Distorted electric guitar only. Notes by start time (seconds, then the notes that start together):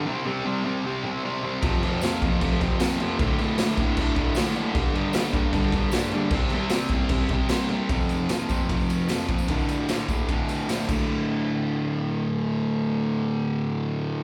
0.06 C3 G3 C4
0.26 C3 G3 C4
0.45 C3 G3 C4
0.64 C3 G3 C4
0.85 C3 G3 C4
1.04 C3 G3 C4
1.24 C3 G3 C4
1.43 C3 G3 C4
1.62 F2 C3 F3
1.83 F2 C3 F3
2.03 F2 C3 F3
2.22 F2 C3 F3
2.42 F2 C3 F3
2.60 F2 C3 F3
2.80 F2 C3 F3
2.99 F2 C3 F3
3.18 D2 A2 D3
3.40 D2 A2 D3
3.59 D2 A2 D3
3.78 D2 A2 D3
3.98 D2 A2 D3
4.16 D2 A2 D3
4.36 D2 A2 D3
4.56 D2 A2 D3
4.74 G2 D3 G3
4.94 G2 D3 G3
5.14 G2 D3 G3
5.33 G2 D3 G3
5.53 G2 D3 G3
5.74 G2 D3 G3
5.93 G2 D3 G3
6.14 G2 D3 G3
6.32 C3 G3 C4
6.53 C3 G3 C4
6.72 C3 G3 C4
6.92 C3 G3 C4
7.11 C3 G3 C4
7.31 C3 G3 C4
7.49 C3 G3 C4
7.70 C3 G3 C4
7.90 F2 C3 F3
8.30 F2 C3 F3
8.49 F2 C3 F3
8.70 F2 C3 F3
9.10 F2 C3 F3
9.29 F2 C3 F3
9.50 D2 A2 D3
9.90 D2 A2 D3
10.09 D2 A2 D3
10.29 D2 A2 D3
10.68 D2 A2 D3
10.87 D2 A2
10.91 D3